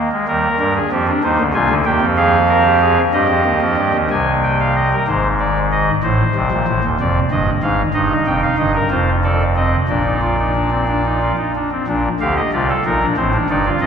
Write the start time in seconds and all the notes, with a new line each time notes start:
0.12 G#3
0.27 D#2 D#3 G3 A#4
0.59 G2 G3 A#4
0.75 G#4
0.91 F2 F3 G4
1.08 D4
1.23 D#2 D#3 D#4 C5
1.39 D2 D3
1.54 C2 C3 F4 G#5
1.69 D2 D3
1.85 D#2 D#3 G4 G5
2.00 F2 F3
2.17 G#4 F5
2.48 A#4
2.65 G4
2.81 G#4
3.13 G2 G3 G4 D#5
3.28 F2 F3
3.45 D#2 D#3
3.61 F2 F3
3.76 G2 G3
3.94 D#2 D#3
4.10 C2 C3 G#5
4.43 G5
4.60 F5
4.75 D#5
4.92 A#4
5.07 G#1 G#2 C5
5.39 D5
5.71 D#5
6.03 A1 A2 C5
6.35 C2 C3
6.51 A#1 A#2
6.68 A1 A2
6.84 D#1 D#2
7.00 F1 F2 D5
7.31 G1 G2 D#5
7.63 G#1 G#2 F5
7.93 G1 G2 D#4 D#5
8.27 F1 F2 G5
8.43 F5
8.58 G1 G2 D#5
8.74 A#4
8.90 F1 F2 F4 C5
9.23 A4 D5
9.56 C4 D#5
9.88 A#1 A#2 D4 D5
10.05 D#4
10.21 F4
10.39 D#4
10.55 D4
10.71 C4
10.88 D4
11.05 D#4
11.22 F4
11.37 D#4
11.55 D4
11.71 C4
11.87 A#1 A#2 D4
12.20 D2 D3 G4 F5
12.37 D#5
12.52 C2 C3 F4 D5
12.69 A4
12.85 A#1 A#2 D#4 A#4
13.02 D4
13.17 A1 A2 C4 C5
13.33 D4
13.49 G1 G2 D#4 D5
13.65 F4
13.81 F1 F2 D#5